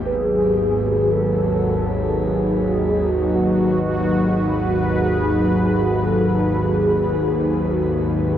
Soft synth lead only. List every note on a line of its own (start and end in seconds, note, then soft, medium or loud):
0.03 1.13 G#4 loud
1.12 2.25 A4 loud
2.24 3.35 G#4 loud
3.34 4.14 F#4 medium
4.96 5.46 G#4 loud
5.51 6.07 G#4 medium
6.06 6.61 A4 medium
6.60 7.71 G#4 loud
7.70 8.38 F#4 medium